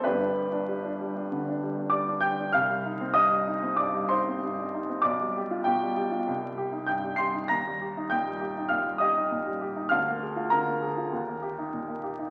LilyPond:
<<
  \new Staff \with { instrumentName = "Upright piano" } { \time 4/4 \key c \minor \tempo 4 = 98 <d' g' b'>2. <d'' d'''>8 <g'' g'''>8 | <f'' f'''>4 <ees'' ees'''>4 <d'' d'''>8 <c'' c'''>4. | <d'' d'''>4 <g' g''>4. r8 <g'' g'''>8 <c''' c''''>8 | <bes'' bes'''>4 <g'' g'''>4 <f'' f'''>8 <ees'' ees'''>4. |
<f'' f'''>4 <bes' bes''>4. r4. | }
  \new Staff \with { instrumentName = "Upright piano" } { \time 4/4 \key c \minor <g,, g,>16 d'16 g16 d'16 g16 d'16 g16 d'16 d16 d'16 g16 d'16 g16 d'16 g16 d'16 | c,16 g16 ees'16 c'16 g,16 g16 ees'16 c'16 g,16 g16 ees'16 c'16 g,16 g16 ees'16 c'16 | b,,16 g16 g'16 f'16 b,16 g16 g'16 f'16 c,16 g16 g'16 ees'16 g,16 g16 g'16 ees'16 | ees,16 g16 g'16 ees'16 bes,16 g16 g'16 ees'16 bes,16 g16 g'16 ees'16 bes,16 g16 g'16 ees'16 |
d,16 bes16 aes'16 f'16 d16 bes16 aes'16 f'16 ees,16 bes16 g'16 ees'16 bes,16 bes16 g'16 ees'16 | }
>>